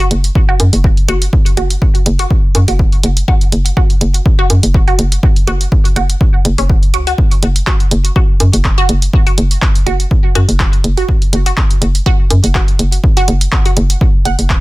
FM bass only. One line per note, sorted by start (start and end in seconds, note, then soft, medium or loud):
0.11 0.30 F#1 loud
0.60 0.70 F#2 medium
0.73 0.91 F#1 medium
1.08 1.28 F#1 medium
1.57 1.76 F#1 loud
2.06 2.25 F#1 loud
2.55 2.65 F#2 medium
2.68 2.86 F#1 medium
3.04 3.23 F#1 medium
3.52 3.72 F#1 loud
4.01 4.20 F#1 loud
4.50 4.60 F#2 medium
4.63 4.81 F#1 medium
4.99 5.18 F#1 medium
5.47 5.67 F#1 medium
5.96 6.15 F#1 loud
6.45 6.55 F#1 loud
6.58 6.95 F#1 medium
6.94 7.13 C#2 loud
7.43 7.62 F#1 loud
7.91 8.11 F#1 loud
8.40 8.50 F#2 medium
8.54 8.72 F#1 medium
8.89 9.08 F#1 medium
9.38 9.57 F#1 loud
9.87 10.06 F#1 loud
10.35 10.46 F#2 medium
10.49 10.67 F#1 medium
10.84 11.03 F#1 medium
11.33 11.52 F#1 loud
11.82 12.01 F#1 loud
12.30 12.41 F#2 medium
12.44 12.62 F#1 medium
12.79 12.98 F#1 medium
13.28 13.47 F#1 loud
13.77 13.96 F#1 loud
14.25 14.36 F#1 loud
14.39 14.60 F#1 medium